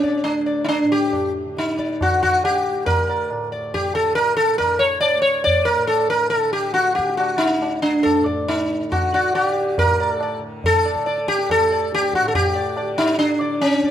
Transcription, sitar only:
Already playing: C#4
0.04 D5
0.24 D4
0.46 D5
0.64 D#4
0.69 D4
0.92 G4
1.58 D#4
1.79 D5
2.02 F#4
2.23 F#4
2.45 G4
2.86 A#4
3.09 D5
3.52 D5
3.74 G4
3.95 A4
4.15 A#4
4.37 A4
4.58 A#4
4.79 C#5
5.01 D5
5.22 C#5
5.44 D5
5.65 A#4
5.87 A4
6.10 A#4
6.30 A4
6.53 G4
6.74 F#4
6.95 G4
7.17 F#4
7.38 D#4
7.82 D4
8.03 A4
8.26 D5
8.48 D#4
8.92 F#4
9.14 F#4 D5
9.35 F#4 D5
9.47 G4
9.79 A#4
10.00 D5
10.13 A4
10.23 D5
10.66 A4
10.85 D5
11.06 D5
11.28 G4
11.51 A4
11.72 D5
11.94 G4
12.15 F#4
12.28 A4
12.35 G4
12.55 D5
12.77 D5
12.98 D#4
13.19 D4
13.41 D5
13.61 C#4
13.85 D5

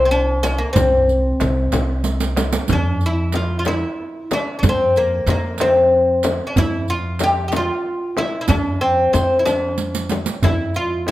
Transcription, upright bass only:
Already playing: C2
0.76 C2
1.41 C2
1.73 C2
2.71 F2
4.63 F2
5.26 F2
6.56 F2
8.49 F2
9.14 F2
10.43 F2

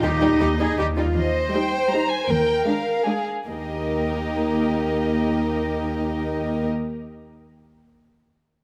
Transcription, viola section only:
0.03 D#4
1.54 G3 D#4
1.92 G3 D#4
2.67 G#3 D4
3.06 G#3 D4
3.47 A#3 D#4

